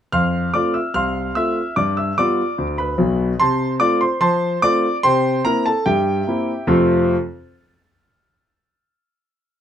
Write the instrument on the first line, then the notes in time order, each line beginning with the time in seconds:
grand piano
0.13 F2 F5 C6 F6
0.54 A3 C4 F4 D5 D6
0.74 E5 E6
0.94 C2 F5 C6 F6
1.35 A3 C4 F4 E5 E6
1.76 G2 D5 D6
1.97 E5 E6
2.18 G3 B3 F4 D5 D6
2.58 D2
2.78 B4 B5
2.98 B1 B2
3.40 C3 C5 A5 C6
3.80 A3 C4 F4 D5 D6
4.01 C5 C6
4.20 F3 C5 A5 C6
4.62 A3 C4 F4 D5 D6
5.03 C3 C5 G5 C6
5.45 A#3 C4 E4 A#4 A#5
5.66 A4 A5
5.86 G2 G4 E5 G5
6.27 A#3 C4 E4
6.67 F2 C3 A3 C4 F4 A4 F5